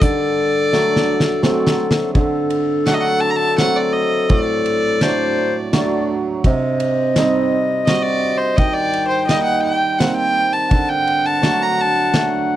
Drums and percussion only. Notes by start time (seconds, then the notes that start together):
0.01 kick, closed hi-hat
0.73 snare
0.96 snare
1.20 snare
1.43 snare
1.67 snare
1.91 snare
2.15 kick, ride
2.50 ride
2.86 snare, ride
3.58 snare, ride
4.29 kick, ride
4.66 ride
5.01 snare, ride
5.73 snare, ride
6.44 kick, ride
6.80 ride
7.16 snare, ride
7.87 snare, ride
8.58 kick, ride
8.93 ride
9.29 snare, ride
10.00 snare, ride
10.71 kick, ride
11.07 ride
11.43 snare, ride
12.14 snare, ride